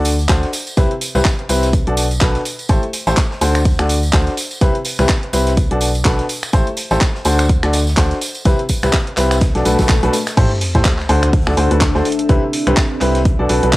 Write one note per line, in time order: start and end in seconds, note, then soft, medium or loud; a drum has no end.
0.00 0.27 D2 loud
0.00 0.11 D3 medium
0.00 0.11 D4 medium
0.00 0.11 F#4 medium
0.00 0.11 A4 medium
0.00 0.11 D5 medium
0.05 closed hi-hat medium
0.05 open hi-hat loud
0.05 tambourine loud
0.19 closed hi-hat soft
0.19 tambourine soft
0.29 0.45 D2 loud
0.29 0.47 D4 medium
0.29 0.47 F#4 medium
0.29 0.47 A4 medium
0.29 0.47 C5 medium
0.29 kick loud
0.29 snare loud
0.29 clap loud
0.29 closed hi-hat medium
0.29 tambourine soft
0.43 snare soft
0.43 closed hi-hat soft
0.53 snare soft
0.53 closed hi-hat medium
0.53 open hi-hat medium
0.53 tambourine medium
0.67 closed hi-hat soft
0.67 tambourine medium
0.77 0.87 C2 medium
0.77 0.89 C3 medium
0.77 0.89 C4 medium
0.77 0.89 E4 medium
0.77 0.89 G4 medium
0.77 0.89 B4 loud
0.77 kick loud
0.77 closed hi-hat medium
0.77 tambourine soft
0.91 closed hi-hat soft
1.01 closed hi-hat medium
1.01 open hi-hat loud
1.01 tambourine loud
1.15 1.22 C2 loud
1.15 1.24 C3 medium
1.15 1.24 C4 medium
1.15 1.24 E4 medium
1.15 1.24 G4 medium
1.15 1.24 B4 medium
1.15 tambourine medium
1.25 kick loud
1.25 snare loud
1.25 clap loud
1.25 closed hi-hat medium
1.25 tambourine soft
1.39 closed hi-hat soft
1.49 1.84 C2 loud
1.49 1.67 C4 medium
1.49 1.67 E4 medium
1.49 1.67 G4 medium
1.49 1.67 B4 loud
1.49 closed hi-hat medium
1.49 open hi-hat medium
1.49 tambourine loud
1.63 snare medium
1.63 closed hi-hat soft
1.63 tambourine medium
1.73 kick loud
1.73 closed hi-hat medium
1.73 tambourine soft
1.87 2.19 B1 loud
1.87 2.03 B2 medium
1.87 2.03 D4 medium
1.87 2.03 F#4 medium
1.87 2.03 A4 medium
1.87 2.03 D5 medium
1.87 closed hi-hat soft
1.97 closed hi-hat medium
1.97 open hi-hat loud
1.97 tambourine loud
2.11 closed hi-hat soft
2.11 tambourine medium
2.21 2.37 B1 loud
2.21 2.39 B2 medium
2.21 2.39 D4 medium
2.21 2.39 F#4 medium
2.21 2.39 A4 medium
2.21 2.39 B4 medium
2.21 kick loud
2.21 snare loud
2.21 clap loud
2.21 closed hi-hat medium
2.21 tambourine soft
2.35 snare medium
2.35 closed hi-hat soft
2.45 closed hi-hat medium
2.45 open hi-hat medium
2.45 tambourine medium
2.59 closed hi-hat soft
2.59 tambourine soft
2.69 2.79 A1 medium
2.69 2.81 A3 medium
2.69 2.81 E4 medium
2.69 2.81 G4 medium
2.69 2.81 A4 medium
2.69 2.81 C5 loud
2.69 kick loud
2.69 closed hi-hat medium
2.69 tambourine soft
2.83 closed hi-hat soft
2.93 closed hi-hat medium
2.93 open hi-hat loud
2.93 tambourine medium
3.07 3.14 A1 loud
3.07 3.16 A3 medium
3.07 3.16 E4 medium
3.07 3.16 G4 medium
3.07 3.16 A4 medium
3.07 3.16 C5 medium
3.07 snare soft
3.07 tambourine medium
3.17 kick loud
3.17 snare loud
3.17 clap loud
3.17 closed hi-hat medium
3.17 tambourine soft
3.31 snare medium
3.41 3.76 D2 loud
3.41 3.59 D3 medium
3.41 3.59 D4 medium
3.41 3.59 F#4 medium
3.41 3.59 A4 medium
3.41 3.59 C5 medium
3.41 closed hi-hat medium
3.41 open hi-hat medium
3.41 tambourine medium
3.55 finger snap medium
3.55 closed hi-hat soft
3.55 tambourine soft
3.65 kick loud
3.65 closed hi-hat medium
3.65 open hi-hat medium
3.65 tambourine soft
3.79 4.11 D2 loud
3.79 3.95 D3 medium
3.79 3.95 D4 medium
3.79 3.95 F#4 medium
3.79 3.95 A4 medium
3.79 3.95 D5 medium
3.79 finger snap medium
3.79 closed hi-hat soft
3.89 closed hi-hat medium
3.89 open hi-hat loud
3.89 tambourine medium
4.03 closed hi-hat soft
4.03 tambourine medium
4.13 4.29 D2 loud
4.13 4.31 D4 medium
4.13 4.31 F#4 medium
4.13 4.31 A4 medium
4.13 4.31 C5 medium
4.13 kick loud
4.13 snare loud
4.13 clap loud
4.13 closed hi-hat medium
4.13 tambourine soft
4.27 snare soft
4.27 closed hi-hat soft
4.37 snare soft
4.37 closed hi-hat medium
4.37 open hi-hat loud
4.37 tambourine medium
4.51 closed hi-hat soft
4.51 tambourine soft
4.61 4.71 C2 medium
4.61 4.73 C3 medium
4.61 4.73 C4 medium
4.61 4.73 E4 medium
4.61 4.73 G4 medium
4.61 4.73 B4 loud
4.61 kick loud
4.61 closed hi-hat medium
4.75 closed hi-hat soft
4.85 closed hi-hat medium
4.85 open hi-hat loud
4.85 tambourine medium
4.99 5.06 C2 loud
4.99 5.08 C3 medium
4.99 5.08 C4 medium
4.99 5.08 E4 medium
4.99 5.08 G4 medium
4.99 5.08 B4 medium
4.99 finger snap medium
4.99 tambourine soft
5.09 kick loud
5.09 snare loud
5.09 clap loud
5.09 closed hi-hat medium
5.23 closed hi-hat soft
5.33 5.68 C2 loud
5.33 5.51 C4 medium
5.33 5.51 E4 medium
5.33 5.51 G4 medium
5.33 5.51 B4 loud
5.33 closed hi-hat medium
5.33 open hi-hat medium
5.33 tambourine loud
5.47 snare medium
5.47 closed hi-hat soft
5.47 tambourine soft
5.57 kick loud
5.57 closed hi-hat medium
5.57 tambourine soft
5.71 6.03 B1 loud
5.71 5.87 B2 medium
5.71 5.87 D4 medium
5.71 5.87 F#4 medium
5.71 5.87 A4 medium
5.71 5.87 D5 medium
5.71 closed hi-hat soft
5.81 closed hi-hat medium
5.81 open hi-hat loud
5.81 tambourine medium
5.95 closed hi-hat soft
5.95 tambourine medium
6.05 6.21 B1 medium
6.05 6.23 B2 medium
6.05 6.23 D4 medium
6.05 6.23 F#4 medium
6.05 6.23 A4 medium
6.05 6.23 B4 medium
6.05 kick loud
6.05 snare loud
6.05 clap loud
6.05 closed hi-hat medium
6.05 tambourine soft
6.19 snare medium
6.19 closed hi-hat soft
6.29 closed hi-hat medium
6.29 open hi-hat medium
6.29 tambourine medium
6.43 finger snap medium
6.43 closed hi-hat soft
6.43 tambourine soft
6.53 6.63 A1 medium
6.53 6.65 A3 medium
6.53 6.65 E4 medium
6.53 6.65 G4 medium
6.53 6.65 A4 medium
6.53 6.65 C5 loud
6.53 kick loud
6.53 closed hi-hat medium
6.53 tambourine soft
6.67 closed hi-hat soft
6.77 closed hi-hat medium
6.77 open hi-hat loud
6.77 tambourine medium
6.91 6.98 A1 loud
6.91 7.00 A3 medium
6.91 7.00 E4 medium
6.91 7.00 G4 medium
6.91 7.00 A4 medium
6.91 7.00 C5 medium
6.91 snare soft
6.91 tambourine soft
7.01 kick loud
7.01 snare loud
7.01 clap loud
7.01 closed hi-hat medium
7.01 tambourine soft
7.15 snare medium
7.25 7.60 D2 loud
7.25 7.43 D3 medium
7.25 7.43 D4 medium
7.25 7.43 F#4 medium
7.25 7.43 A4 medium
7.25 7.43 C5 loud
7.25 closed hi-hat medium
7.25 open hi-hat medium
7.25 tambourine medium
7.39 finger snap medium
7.39 closed hi-hat medium
7.39 tambourine soft
7.49 kick loud
7.49 closed hi-hat medium
7.63 7.95 D2 loud
7.63 7.79 D3 medium
7.63 7.79 D4 medium
7.63 7.79 F#4 medium
7.63 7.79 A4 medium
7.63 7.79 D5 medium
7.63 finger snap medium
7.63 snare soft
7.63 closed hi-hat medium
7.73 snare loud
7.73 closed hi-hat medium
7.73 open hi-hat loud
7.73 tambourine medium
7.87 snare soft
7.87 tambourine soft
7.97 8.13 D2 loud
7.97 8.15 D4 medium
7.97 8.15 F#4 medium
7.97 8.15 A4 medium
7.97 8.15 C5 medium
7.97 kick loud
7.97 snare loud
7.97 clap loud
7.97 closed hi-hat medium
7.97 tambourine soft
8.11 snare medium
8.11 closed hi-hat soft
8.21 snare soft
8.21 closed hi-hat medium
8.21 open hi-hat medium
8.21 tambourine medium
8.34 closed hi-hat soft
8.34 tambourine soft
8.45 8.55 C2 medium
8.45 8.57 C3 medium
8.45 8.57 C4 medium
8.45 8.57 E4 medium
8.45 8.57 G4 medium
8.45 8.57 B4 loud
8.45 kick loud
8.45 closed hi-hat medium
8.45 tambourine soft
8.59 closed hi-hat soft
8.69 kick medium
8.69 closed hi-hat medium
8.69 open hi-hat loud
8.69 tambourine medium
8.83 8.90 C2 loud
8.83 8.92 C3 medium
8.83 8.92 C4 medium
8.83 8.92 E4 medium
8.83 8.92 G4 medium
8.83 8.92 B4 loud
8.83 finger snap medium
8.83 closed hi-hat soft
8.83 tambourine medium
8.93 kick loud
8.93 snare loud
8.93 clap loud
8.93 closed hi-hat medium
8.93 tambourine soft
9.07 closed hi-hat soft
9.17 9.52 C2 loud
9.17 9.35 C4 medium
9.17 9.35 E4 medium
9.17 9.35 G4 medium
9.17 9.35 B4 loud
9.17 clap medium
9.17 closed hi-hat medium
9.17 open hi-hat medium
9.17 tambourine medium
9.31 finger snap medium
9.31 snare medium
9.31 closed hi-hat medium
9.31 tambourine medium
9.41 kick loud
9.41 snare medium
9.41 closed hi-hat medium
9.41 tambourine soft
9.41 swell medium
9.55 9.63 B1 loud
9.55 9.63 B2 medium
9.55 9.63 D4 medium
9.55 9.63 F#4 medium
9.55 9.63 A4 medium
9.55 9.63 D5 medium
9.55 snare medium
9.55 closed hi-hat medium
9.65 9.76 B1 medium
9.65 9.77 B2 medium
9.65 9.77 D4 medium
9.65 9.77 F#4 medium
9.65 9.77 A4 medium
9.65 9.77 B4 medium
9.65 closed hi-hat medium
9.65 open hi-hat loud
9.65 tambourine medium
9.79 10.00 B1 loud
9.79 9.88 B2 medium
9.79 9.88 D4 medium
9.79 9.88 F#4 medium
9.79 9.88 A4 medium
9.79 9.88 B4 medium
9.79 kick medium
9.79 snare loud
9.79 closed hi-hat medium
9.79 closed hi-hat soft
9.79 tambourine medium
9.89 kick loud
9.89 snare soft
9.89 clap loud
9.89 closed hi-hat medium
9.89 tambourine soft
10.03 10.10 B1 loud
10.03 10.12 B2 medium
10.03 10.12 D4 medium
10.03 10.12 F#4 medium
10.03 10.12 A4 medium
10.03 10.12 B4 medium
10.03 closed hi-hat soft
10.03 closed hi-hat medium
10.13 snare loud
10.13 closed hi-hat medium
10.13 open hi-hat medium
10.13 tambourine medium
10.27 finger snap medium
10.27 snare loud
10.27 closed hi-hat medium
10.27 closed hi-hat soft
10.27 tambourine soft
10.37 10.47 A1 medium
10.37 10.49 A3 medium
10.37 10.49 E4 medium
10.37 10.49 G4 medium
10.37 10.49 A4 medium
10.37 12.53 A4 loud
10.37 10.49 C5 loud
10.37 kick loud
10.37 closed hi-hat medium
10.37 closed hi-hat loud
10.37 crash loud
10.37 sub drop medium
10.61 closed hi-hat medium
10.61 open hi-hat loud
10.71 10.84 A3 medium
10.71 10.84 E4 medium
10.71 10.84 G4 medium
10.71 10.84 A4 medium
10.71 10.84 C5 medium
10.71 12.53 E5 medium
10.75 10.82 A2 loud
10.75 kick medium
10.75 snare soft
10.75 closed hi-hat medium
10.85 kick loud
10.85 snare loud
10.85 clap loud
10.85 closed hi-hat medium
10.85 closed hi-hat soft
10.99 snare medium
10.99 clap soft
11.09 11.44 D2 loud
11.09 11.27 D3 medium
11.09 11.27 D4 medium
11.09 12.53 D4 medium
11.09 11.27 F#4 medium
11.09 11.27 A4 medium
11.09 11.27 C5 loud
11.09 closed hi-hat medium
11.09 open hi-hat medium
11.23 finger snap medium
11.23 closed hi-hat medium
11.33 kick loud
11.33 closed hi-hat medium
11.33 open hi-hat medium
11.47 11.55 D2 loud
11.47 11.55 D3 medium
11.47 11.55 D4 medium
11.47 11.55 F#4 medium
11.47 11.55 A4 medium
11.47 11.55 D5 medium
11.47 finger snap medium
11.57 11.68 D2 loud
11.57 11.69 D3 medium
11.57 11.69 D4 medium
11.57 11.69 F#4 medium
11.57 11.69 A4 medium
11.57 11.69 C5 medium
11.57 closed hi-hat medium
11.57 open hi-hat loud
11.71 11.92 D2 medium
11.71 11.80 D3 medium
11.71 11.80 D4 medium
11.71 11.80 F#4 medium
11.71 11.80 A4 medium
11.71 11.80 B4 medium
11.71 closed hi-hat soft
11.71 closed hi-hat medium
11.81 kick loud
11.81 snare loud
11.81 clap loud
11.81 closed hi-hat medium
11.95 12.02 D2 loud
11.95 12.04 D4 medium
11.95 12.04 F#4 medium
11.95 12.04 A4 medium
11.95 12.04 C5 medium
11.95 snare medium
12.05 13.25 C4 medium
12.05 snare soft
12.05 closed hi-hat medium
12.05 open hi-hat medium
12.12 closed hi-hat medium
12.19 closed hi-hat medium
12.29 12.39 C2 medium
12.29 12.41 C3 medium
12.29 12.41 C4 medium
12.29 12.41 E4 medium
12.29 12.41 G4 medium
12.29 12.41 B4 loud
12.29 kick loud
12.29 closed hi-hat medium
12.53 closed hi-hat medium
12.53 open hi-hat loud
12.60 13.65 D5 medium
12.67 12.74 C2 loud
12.67 12.76 C3 medium
12.67 12.76 C4 medium
12.67 12.76 E4 medium
12.67 12.76 G4 medium
12.67 12.76 B4 loud
12.67 finger snap medium
12.67 closed hi-hat medium
12.77 kick loud
12.77 snare loud
12.77 clap loud
12.77 closed hi-hat soft
12.77 closed hi-hat medium
13.01 13.36 C2 loud
13.01 13.19 C4 medium
13.01 13.19 E4 medium
13.01 13.19 G4 medium
13.01 13.19 B4 loud
13.01 clap soft
13.01 closed hi-hat medium
13.01 open hi-hat medium
13.15 snare medium
13.15 closed hi-hat medium
13.25 13.77 B4 medium
13.25 kick loud
13.25 closed hi-hat medium
13.39 13.47 B1 loud
13.39 13.47 B2 medium
13.39 13.47 D4 medium
13.39 13.47 F#4 medium
13.39 13.47 A4 medium
13.39 13.47 D5 medium
13.49 13.60 B1 loud
13.49 13.61 B2 medium
13.49 13.61 D4 medium
13.49 13.61 F#4 medium
13.49 13.61 A4 medium
13.49 13.61 B4 medium
13.49 closed hi-hat medium
13.49 open hi-hat loud
13.63 13.77 B1 loud
13.63 13.72 B2 medium
13.63 13.72 D4 medium
13.63 13.72 F#4 medium
13.63 13.72 A4 medium
13.63 13.72 B4 medium
13.63 closed hi-hat medium
13.63 closed hi-hat soft
13.73 kick loud
13.73 snare loud
13.73 clap loud
13.73 closed hi-hat medium